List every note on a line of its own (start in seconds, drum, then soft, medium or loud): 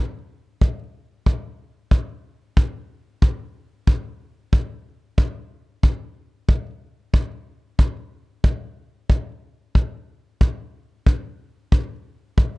0.61 kick medium
1.26 kick medium
1.91 kick medium
2.57 kick medium
3.22 kick medium
3.87 kick medium
4.53 kick medium
5.18 kick medium
5.83 kick medium
6.49 kick medium
7.14 kick medium
7.79 kick medium
8.44 kick medium
9.10 kick medium
9.75 kick medium
10.41 kick medium
11.06 kick medium
11.72 kick medium
12.38 kick medium